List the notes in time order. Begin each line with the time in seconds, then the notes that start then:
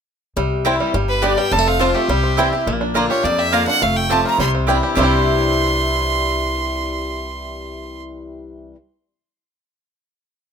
0.36 C2 C3 G3
0.65 E3 G3 C4 E4 C5 G5
0.80 G3
0.94 G1 G2 G3
1.09 B4
1.22 D3 G3 B3 D4 G4 D5 G5
1.37 G3 B3 G4 G5
1.52 F1 F2 G3 A5
1.59 A3
1.67 C4 F5
1.79 F3 A3 C4 F4 C5 A5
1.95 A3 G4
2.08 C2 C3 G3
2.23 C4
2.37 E3 G3 C4 E4 C5 G5
2.53 C4 E4 G4
2.67 A#1 A#2 G#3
2.73 A#3
2.81 D4
2.94 D3 A#3 D4 F4 D5 A#5
3.10 D4 F4 G4 C#5
3.24 F2 A#3 D5
3.38 G4 E5
3.52 D3 A#3 D4 F4 D5 F5 A#5
3.67 D4 F4 F#5
3.82 F1 F2 A3 F5
3.97 G5
4.09 F3 A3 C4 F4 G4 C5 A5
4.26 F4 A#5
4.39 C2 C3 G3 C6
4.55 C4
4.67 E3 G3 C4 D4 E4 D5 G5
4.83 G4
4.95 C2 C3 E3 G3 C4 D4 E4 D5 G5 C6
4.99 C4 E4
5.03 G4